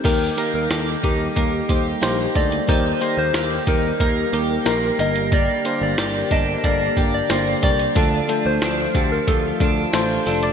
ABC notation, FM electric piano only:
X:1
M:4/4
L:1/8
Q:1/4=91
K:Eblyd
V:1 name="FM electric piano"
[B,EGB] [B,EGB] [B,EGA] [B,EGB] [B,EGB] [B,EGc] [B,EGc] [B,EGA] | [B,EGB] [B,EGc] [B,EGB] [B,EGB] [B,EGB] [B,EGB] [B,EGB] [D,B,GB]- | [D,B,GB] [B,DGc] [B,DGB] [B,DGB] [B,DGA] [B,DGB] [B,DGc] [B,DGB] | [A,DFA] [A,DFA] [A,DFA] [A,DFG] [A,DFA] [A,DFA] [A,DFA] [A,DFA] |]